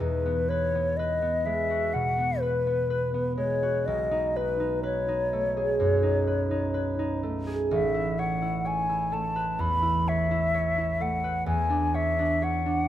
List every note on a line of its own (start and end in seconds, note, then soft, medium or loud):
0.00 3.90 E2 soft
0.00 1.45 G#3 soft
0.00 0.25 B3 soft
0.00 0.49 B4 soft
0.00 0.51 B4 soft
0.26 0.74 B3 soft
0.49 0.98 B4 soft
0.49 0.98 C#5 soft
0.75 1.21 B3 soft
0.97 2.41 B4 soft
0.97 1.47 D#5 soft
1.22 2.17 B3 soft
1.46 3.36 G#3 soft
1.46 1.95 E5 soft
1.70 3.62 F#4 soft
1.94 3.91 B2 soft
1.94 2.42 F#5 medium
2.18 2.65 B3 soft
2.40 3.37 B4 soft
2.40 2.89 B4 soft
2.67 3.13 B3 soft
2.90 4.35 B4 soft
3.14 7.04 B3 soft
3.37 7.27 G#3 soft
3.37 3.87 C#5 soft
3.63 7.53 F#4 soft
3.86 7.76 B1 soft
3.86 4.38 D#5 soft
4.11 4.59 D#4 soft
4.36 4.82 B4 soft
4.36 4.84 B4 soft
4.60 5.07 D#4 soft
4.83 6.26 B4 soft
4.83 7.20 C#5 soft
5.08 6.02 D#4 soft
5.33 7.22 A3 soft
5.57 7.46 G#4 soft
5.80 7.76 F#2 soft
6.03 6.50 D#4 soft
6.27 6.73 B4 soft
6.51 6.98 D#4 soft
6.74 9.35 B4 soft
6.99 7.75 D#4 soft
7.23 9.11 A3 soft
7.47 7.75 G#4 soft
7.71 11.52 A1 soft
7.71 8.21 E5 soft
7.94 8.41 E4 soft
8.19 8.64 C#5 soft
8.19 8.68 F#5 soft
8.42 8.88 E4 soft
8.65 10.07 C#5 soft
8.65 9.15 G#5 medium
8.89 9.81 E4 soft
9.12 10.99 A3 soft
9.12 9.62 A5 medium
9.36 11.23 B4 soft
9.59 11.45 E2 soft
9.59 10.10 B5 medium
9.82 10.30 E4 soft
10.08 10.53 C#5 soft
10.08 11.03 E5 medium
10.31 10.77 E4 soft
10.54 11.93 C#5 soft
10.78 12.88 E4 soft
11.00 11.51 A3 soft
11.00 11.47 F#5 soft
11.24 12.88 B4 soft
11.46 12.88 E2 soft
11.46 11.97 G#5 medium
11.70 12.18 D4 soft
11.94 12.41 C#5 soft
11.94 12.45 E5 medium
12.19 12.65 D4 soft
12.42 12.88 C#5 soft
12.42 12.88 F#5 medium
12.66 12.88 D4 soft